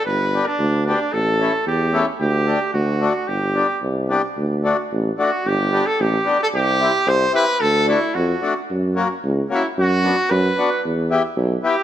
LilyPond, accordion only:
\new Staff \with { instrumentName = "Accordion" } { \time 2/4 \key g \major \tempo 4 = 112 r8 <b d' g'>8 r8 <b d' g'>8 | r8 <a cis' e'>8 r8 <a cis' e'>8 | r8 <a d' g'>8 r8 <a d' fis'>8 | r8 <b d' g'>8 r8 <b d' g'>8 |
\key d \major r8 <a d' fis'>8 r8 <a d' fis'>8 | r8 <b d' g'>8 r8 <b d' g'>8 | r8 <c' e' g'>8 r8 <c' e' g'>8 | r8 <a d' fis'>8 r8 <a d' fis'>8 |
r8 <ais cis' fis'>8 r8 <ais cis' fis'>8 | r8 <b d' fis'>8 r8 <b d' fis'>8 | r8 <b e' g'>8 r8 <b e' g'>8 | }